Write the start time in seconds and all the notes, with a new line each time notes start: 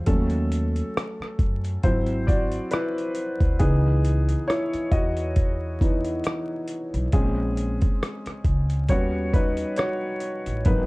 0.06 D#2 F#3 A3 C#4 A4, kick, closed hi-hat
0.30 closed hi-hat
0.52 closed hi-hat
0.76 closed hi-hat
0.97 cross-stick, closed hi-hat
1.20 muted upright bass stroke, cross-stick
1.39 F#2, kick, closed hi-hat
1.65 closed hi-hat
1.83 G#1 F#3 C4 E4 C5, kick, closed hi-hat
2.06 closed hi-hat
2.27 F#4 D5, kick, closed hi-hat
2.52 closed hi-hat
2.71 E4 B4, cross-stick, closed hi-hat
2.98 closed hi-hat
3.15 closed hi-hat
3.41 D2, kick, closed hi-hat
3.59 C#2 E3 B3 D#4 G#4, kick, closed hi-hat
4.05 closed hi-hat
4.29 closed hi-hat
4.47 E4 C#5, cross-stick, closed hi-hat
4.74 muted upright bass stroke, closed hi-hat
4.91 E2 F#4 D#5, kick, closed hi-hat
5.17 closed hi-hat
5.36 kick, closed hi-hat
5.81 E3 B3 D#4, kick, closed hi-hat
6.04 closed hi-hat
6.24 cross-stick, closed hi-hat
6.68 closed hi-hat
6.94 B1, closed hi-hat
7.12 A#1 G#3 C4 C#4 G#4, kick, closed hi-hat
7.57 closed hi-hat
7.81 kick, closed hi-hat
8.03 cross-stick, closed hi-hat
8.26 muted upright bass stroke, cross-stick, closed hi-hat
8.45 C#2, kick, closed hi-hat
8.70 closed hi-hat
8.89 D#2 G3 B3 C#4 F#4 C#5, kick, closed hi-hat
9.34 D#4 B4, kick, closed hi-hat
9.57 closed hi-hat
9.76 F#4 C#5, cross-stick, closed hi-hat
10.20 closed hi-hat
10.46 A1, closed hi-hat
10.65 G#1 F#3 B3 D#4 A#4 B4, kick, closed hi-hat